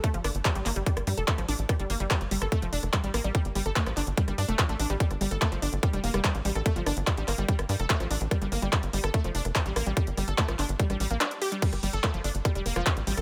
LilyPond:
<<
  \new Staff \with { instrumentName = "Synth arpeggio sound" } { \clef bass \time 4/4 \key g \minor \tempo 4 = 145 a16 f16 d'16 r16 g16 g16 bes16 g16 g16 r16 g16 a'16 a16 f16 d'16 r16 | g16 g16 bes16 g16 g16 r16 g16 a'16 a16 f16 d'16 r16 g16 g16 bes16 g16 | g16 r16 g16 a'16 a16 f16 d'16 r16 g16 g16 d'16 a16 f16 a16 d'16 g16 | g16 r16 g16 a'16 a16 f16 d'16 r16 g16 g16 bes16 g16 g16 r16 g16 a'16 |
a16 f16 d'16 r16 g16 g16 bes16 g16 g16 r16 g16 a'16 a16 f16 d'16 r16 | g16 g16 bes16 g16 g16 r16 g16 a'16 a16 f16 d'16 r16 g16 g16 bes16 g16 | g16 r16 g16 a'16 a16 f16 d'16 r16 g16 g16 g16 bes16 d'16 r16 g'16 g16 | g16 r16 g16 a'16 a16 f16 d'16 r16 g16 g16 bes16 f16 g16 r16 g16 a'16 | }
  \new Staff \with { instrumentName = "Analog synth bass" } { \clef bass \time 4/4 \key g \minor r16 g,,16 g,,16 g,,16 r16 a,,16 g,,16 g,,16 r16 g,,16 g,16 f,,16 r16 a,,16 a,,16 a,,16 | r16 g,,16 g,,16 g,,16 r16 g,,16 g,,16 g,,16 r16 f,,16 f,,16 f,,16 r16 a,,16 a,,16 a,,16 | r16 g,,16 g,,16 g,,16 r16 a,,16 g,,16 g,,16 r16 g,,16 g,16 f,,16 r16 a,,16 a,,16 a,,16 | r16 g,,16 g,,16 g,,16 r16 g,,16 g,,16 g,,16 r16 f,,16 f,,16 f,,16 r16 a,,16 a,,16 a,,16 |
r16 g,,16 g,,16 g,,16 r16 a,,16 g,,16 g,,16 r16 g,,16 g,16 f,,16 r16 a,,16 a,,16 a,,16 | r16 g,,16 g,,16 g,,16 r16 g,,16 g,,16 g,,16 r16 f,,16 f,,16 f,,16 r16 a,,16 a,,16 a,,16 | r16 g,,16 g,,16 g,,16 r16 a,,16 g,,16 g,,16 r16 a,,16 a,,16 a,,16 r4 | r16 g,,16 g,,16 g,,16 r16 g,,16 g,,16 g,,16 r16 f,,16 f,,16 f,,16 r16 a,,16 a,,16 a,,16 | }
  \new DrumStaff \with { instrumentName = "Drums" } \drummode { \time 4/4 <hh bd>16 hh16 <hho ss>16 hh16 <hc hh bd>16 hh16 <hc hho ss>16 hh16 <hh bd>16 <hh ss>16 hho16 hh16 <hc hh bd>16 <hh ss>16 hho16 hh16 | <hh bd ss>16 hh16 hho16 hh16 <hc hh bd ss>16 hh16 hho16 <hh ss>16 <hh bd>16 hh16 hho16 <hh ss>16 <hc hh bd>16 hh16 <hho ss>16 hh16 | <hh bd>16 hh16 <hho ss>16 hh16 <hc hh bd>16 <hh ss>16 <hc hho>16 hh16 <hh bd>16 <hh ss>16 hho16 hh16 <hc hh bd ss>16 hh16 hho16 hh16 | <hh bd>16 <hh ss>16 hho16 hh16 <hc hh bd ss>16 hh16 hho16 hh16 <hh bd ss>16 hh16 hho16 <hh ss>16 <hc hh bd>16 hh16 hho16 <hh ss>16 |
<hh bd>16 hh16 <hho ss>16 hh16 <hc hh bd>16 hh16 <hc hho ss>16 hh16 <hh bd>16 <hh ss>16 hho16 hh16 <hc hh bd>16 <hh ss>16 hho16 hh16 | <hh bd ss>16 hh16 hho16 hh16 <hc hh bd ss>16 hh16 hho16 <hh ss>16 <hh bd>16 hh16 hho16 <hh ss>16 <hc hh bd>16 hh16 <hho ss>16 hh16 | <hh bd>16 hh16 <hho ss>16 hh16 <hc hh bd>16 <hh ss>16 <hc hho>16 hh16 <hh bd>16 <hh ss>16 hho16 hh16 <hc hh ss>16 hh16 hho16 hh16 | <cymc hh bd>16 <hh ss>16 hho16 hh16 <hc hh bd ss>16 hh16 hho16 hh16 <hh bd ss>16 hh16 hho16 <hh ss>16 <hc hh bd>16 hh16 hho16 <hh ss>16 | }
>>